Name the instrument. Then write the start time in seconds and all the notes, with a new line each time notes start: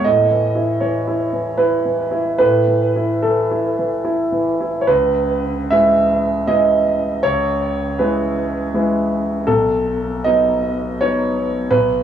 grand piano
0.04 A2 D#5
0.30 E3
0.55 E4
0.80 E3 C#5
1.07 E4
1.33 E3
1.57 E4 B4
1.85 E3
2.11 E4
2.38 A2 B4
2.68 E3
2.96 E4
3.22 E3 A4
3.51 E4
3.79 E3
4.05 E4
4.32 E3
4.60 E4
4.81 C#5
4.87 C#2 B4
5.70 E3 G#3 E4 E5
6.47 E3 G#3 E4 D#5
7.23 C#2 C#5
7.99 E3 G#3 E4 B4
8.74 E3 G#3 E4
9.47 B1 A4
10.24 F#3 B3 D#4 D#5
11.01 F#3 B3 D#4 C#5
11.71 B1 B4